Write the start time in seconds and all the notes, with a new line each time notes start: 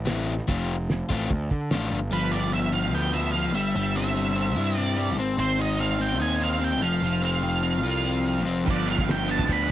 Already playing: A1
0.05 E3 C4 E4, snare, open hi-hat
0.28 open hi-hat
0.38 snare
0.48 F1 A3 C4 F4, kick, open hi-hat
0.69 open hi-hat
0.90 snare, open hi-hat
1.09 A1 A3 C4 F4, kick, open hi-hat
1.30 D2, kick, open hi-hat
1.50 D3, kick, open hi-hat
1.71 A1 F3 A3 D4 F4, snare, open hi-hat
1.92 G1, open hi-hat
2.11 G1 F3 B4
2.32 B3 D5
2.52 F3 E5
2.73 F3 F5
2.93 D2 B3 G5
3.14 F3 E5
3.32 F3 F5
3.55 G1 G3 E5
3.76 G1 G3
3.96 C4 E5
4.16 G3
4.36 C4
4.56 G2 E4
4.77 C4 D5
4.97 G3
5.18 G#1 C4
5.38 G#1 C4 C5
5.59 D#4 D#5
5.79 C4 F5
5.99 C4 G5
6.20 D#2 D#4 G#5
6.40 C4 F5
6.60 C4
6.64 G5
6.81 F1 F3 F5
7.02 F1 F3
7.22 C4 F5
7.43 F3
7.63 C4
7.83 C2 F4
8.03 C4
8.26 F3
8.45 F1 C4
8.65 G1 F3 G3 D4 F4, kick, open hi-hat
8.69 B4 D5
8.86 B3
8.90 F5
8.98 kick, snare
9.07 F3, snare, open hi-hat
9.11 G5
9.28 B3 A5
9.39 kick
9.48 D2 G3 D4 F4 B4, kick, open hi-hat
9.53 B5
9.68 B3